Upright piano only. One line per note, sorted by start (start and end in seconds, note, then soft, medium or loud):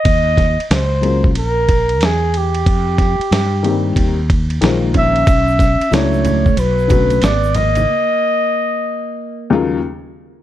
1.01 1.27 F#3 medium
1.01 1.28 G#3 soft
1.01 1.28 A#3 soft
1.01 1.29 C#4 soft
1.01 1.29 F4 medium
3.63 4.12 D#3 medium
3.63 3.69 G3 soft
3.63 4.13 A#3 medium
3.63 4.14 C4 medium
3.63 4.14 G4 medium
3.70 4.16 G3 medium
4.61 5.27 D#3 medium
4.61 5.27 G#3 medium
4.61 5.27 A#3 medium
4.61 5.28 F4 medium
4.61 5.28 C5 medium
5.91 6.00 C#3 medium
5.91 6.41 F#3 medium
5.91 6.41 A3 medium
5.91 6.42 C#4 medium
5.91 6.42 E4 medium
5.97 6.44 D4 medium
6.88 7.14 D3 medium
6.88 7.15 F#3 medium
6.88 7.15 A3 medium
6.88 7.15 C#4 medium
6.88 7.16 F#4 medium
9.50 9.76 D#2 medium
9.50 9.76 C#3 medium
9.50 9.76 F#3 medium
9.50 9.77 G#3 medium
9.50 9.77 A#3 medium
9.50 9.77 F4 loud